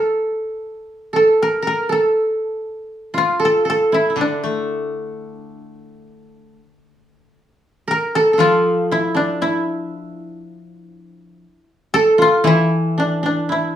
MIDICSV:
0, 0, Header, 1, 4, 480
1, 0, Start_track
1, 0, Tempo, 1016949
1, 55, Time_signature, 2, 2, 24, 8
1, 1976, Tempo, 1056338
1, 3896, Tempo, 1013514
1, 5816, Tempo, 1043478
1, 6410, End_track
2, 0, Start_track
2, 0, Title_t, "Koto"
2, 0, Program_c, 0, 107
2, 0, Note_on_c, 0, 69, 48
2, 531, Note_off_c, 0, 69, 0
2, 533, Note_on_c, 0, 69, 55
2, 767, Note_on_c, 0, 70, 67
2, 795, Note_off_c, 0, 69, 0
2, 893, Note_on_c, 0, 69, 52
2, 921, Note_off_c, 0, 70, 0
2, 1481, Note_on_c, 0, 65, 67
2, 1601, Note_off_c, 0, 69, 0
2, 1603, Note_on_c, 0, 69, 67
2, 1721, Note_off_c, 0, 69, 0
2, 1723, Note_on_c, 0, 69, 65
2, 1851, Note_on_c, 0, 64, 62
2, 1880, Note_off_c, 0, 65, 0
2, 1932, Note_off_c, 0, 64, 0
2, 1934, Note_on_c, 0, 64, 38
2, 1968, Note_on_c, 0, 62, 53
2, 2597, Note_off_c, 0, 69, 0
2, 2964, Note_off_c, 0, 64, 0
2, 3070, Note_off_c, 0, 62, 0
2, 3652, Note_on_c, 0, 70, 62
2, 3781, Note_on_c, 0, 69, 65
2, 3808, Note_off_c, 0, 70, 0
2, 3858, Note_off_c, 0, 69, 0
2, 3860, Note_on_c, 0, 69, 52
2, 3880, Note_on_c, 0, 65, 62
2, 4134, Note_on_c, 0, 64, 59
2, 4162, Note_off_c, 0, 65, 0
2, 4243, Note_on_c, 0, 62, 57
2, 4369, Note_off_c, 0, 64, 0
2, 4371, Note_on_c, 0, 64, 56
2, 4760, Note_off_c, 0, 69, 0
2, 5392, Note_off_c, 0, 62, 0
2, 5443, Note_off_c, 0, 64, 0
2, 5571, Note_on_c, 0, 69, 75
2, 5681, Note_on_c, 0, 65, 68
2, 5803, Note_on_c, 0, 64, 74
2, 5831, Note_off_c, 0, 65, 0
2, 6051, Note_on_c, 0, 62, 55
2, 6165, Note_off_c, 0, 62, 0
2, 6167, Note_on_c, 0, 62, 56
2, 6285, Note_off_c, 0, 64, 0
2, 6287, Note_on_c, 0, 64, 49
2, 6410, Note_off_c, 0, 62, 0
2, 6410, Note_off_c, 0, 64, 0
2, 6410, Note_off_c, 0, 69, 0
2, 6410, End_track
3, 0, Start_track
3, 0, Title_t, "Koto"
3, 0, Program_c, 1, 107
3, 0, Note_on_c, 1, 69, 53
3, 546, Note_off_c, 1, 69, 0
3, 548, Note_on_c, 1, 69, 68
3, 672, Note_on_c, 1, 70, 67
3, 701, Note_off_c, 1, 69, 0
3, 787, Note_off_c, 1, 70, 0
3, 789, Note_on_c, 1, 70, 69
3, 908, Note_on_c, 1, 69, 62
3, 936, Note_off_c, 1, 70, 0
3, 1500, Note_on_c, 1, 65, 77
3, 1626, Note_off_c, 1, 69, 0
3, 1628, Note_on_c, 1, 69, 75
3, 1743, Note_off_c, 1, 69, 0
3, 1745, Note_on_c, 1, 69, 81
3, 1861, Note_on_c, 1, 64, 65
3, 1889, Note_off_c, 1, 65, 0
3, 1986, Note_on_c, 1, 62, 60
3, 2619, Note_off_c, 1, 69, 0
3, 2894, Note_off_c, 1, 64, 0
3, 3089, Note_off_c, 1, 62, 0
3, 3667, Note_on_c, 1, 70, 77
3, 3778, Note_on_c, 1, 69, 73
3, 3805, Note_off_c, 1, 70, 0
3, 3892, Note_on_c, 1, 65, 75
3, 4137, Note_on_c, 1, 64, 64
3, 4166, Note_off_c, 1, 65, 0
3, 4253, Note_on_c, 1, 62, 63
3, 4371, Note_off_c, 1, 64, 0
3, 4373, Note_on_c, 1, 64, 66
3, 4675, Note_off_c, 1, 69, 0
3, 5401, Note_off_c, 1, 62, 0
3, 5445, Note_off_c, 1, 64, 0
3, 5566, Note_on_c, 1, 69, 97
3, 5699, Note_on_c, 1, 65, 81
3, 5819, Note_on_c, 1, 64, 77
3, 5846, Note_off_c, 1, 65, 0
3, 6060, Note_on_c, 1, 62, 58
3, 6178, Note_off_c, 1, 62, 0
3, 6180, Note_on_c, 1, 62, 57
3, 6298, Note_off_c, 1, 64, 0
3, 6300, Note_on_c, 1, 64, 56
3, 6410, Note_off_c, 1, 62, 0
3, 6410, Note_off_c, 1, 64, 0
3, 6410, Note_off_c, 1, 69, 0
3, 6410, End_track
4, 0, Start_track
4, 0, Title_t, "Koto"
4, 0, Program_c, 2, 107
4, 1963, Note_on_c, 2, 50, 43
4, 2089, Note_on_c, 2, 57, 33
4, 3056, Note_off_c, 2, 57, 0
4, 3415, Note_off_c, 2, 50, 0
4, 3885, Note_on_c, 2, 53, 49
4, 5330, Note_off_c, 2, 53, 0
4, 5803, Note_on_c, 2, 52, 56
4, 6410, Note_off_c, 2, 52, 0
4, 6410, End_track
0, 0, End_of_file